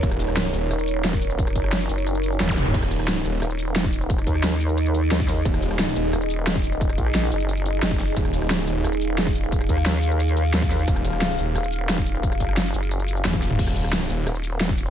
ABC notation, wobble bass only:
X:1
M:4/4
L:1/8
Q:1/4=177
K:Ebm
V:1 name="Wobble bass" clef=bass
z4 E,,,4- | E,,, G,,,2 G,,,3 z2 | z4 E,,,4- | E,,, E,,4- E,, E,,2 |
z4 E,,,4- | E,,, B,,,2 G,,,3 F,,,2 | z4 E,,,4- | E,,, E,,4- E,, E,,2 |
z4 E,,,4- | E,,, G,,,2 G,,,3 z2 | z4 E,,,4 |]